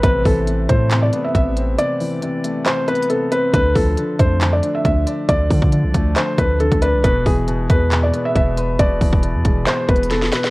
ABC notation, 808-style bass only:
X:1
M:4/4
L:1/16
Q:1/4=137
K:Am
V:1 name="808-style bass" clef=bass
A,,,2 A,,,4 A,,4 z2 A,,,4 | z16 | D,,2 D,,2 z2 F,,4 z2 D,,2 z2 | D,,2 D,3 C,, D,,2 z2 D,,3 D,,2 C,, |
E,,,2 E,,,4 E,,4 z2 E,,,4 | E,,,2 E,,,3 E,, E,,,2 z2 E,,,4 z2 |]